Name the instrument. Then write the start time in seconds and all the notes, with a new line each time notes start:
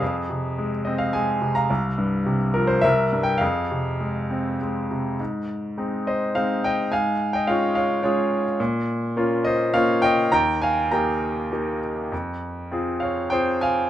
grand piano
Already playing: G#4 F5
0.02 F2
0.30 C3
0.58 G#3
0.85 C4 D#5
0.98 F5
1.13 G#3 G#5
1.42 C3
1.55 F5 A#5
1.70 C2
1.98 G2
2.26 C3
2.54 F3 A#4
2.67 C5
2.81 C2 A#4 E5
3.13 G2
3.23 G5
3.38 F2 G#4 F5
3.71 C3
4.00 G#3
4.30 C4
4.61 G#3
4.91 C3
5.20 G#2
5.78 G#3 C4 D#4
6.07 C5 D#5
6.35 G#3 C4 D#4 C5 F5
6.64 D#5 G5
6.92 G#2 F5 G#5
7.33 D#5 G5
7.47 G#3 C#4 F4 C#5 F5
7.75 C#5 F5
8.03 G#3 C#4 F4 G#4 C#5
8.60 A#2
9.17 A#3 C#4 F4
9.45 C5 D#5
9.73 A#3 C#4 F4 C#5 F5
10.02 D#5 G5
10.32 D#2 G5 A#5
10.62 F5 G#5
10.91 A#3 D#4 G4 G5 A#5
11.52 A#3 D#4 G4
12.12 F2
12.71 C4 F4 G#4
13.00 C#5 F5
13.30 C4 F4 G#4 C5 G5
13.61 F5 G#5